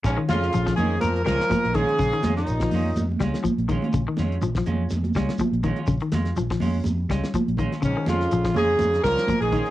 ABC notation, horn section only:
X:1
M:4/4
L:1/16
Q:"Swing 16ths" 1/4=124
K:Bbdor
V:1 name="Horn section"
D2 F4 A2 B2 B4 A2- | A3 E6 z6 z | z16 | z16 |
D2 F4 A4 B3 A3 |]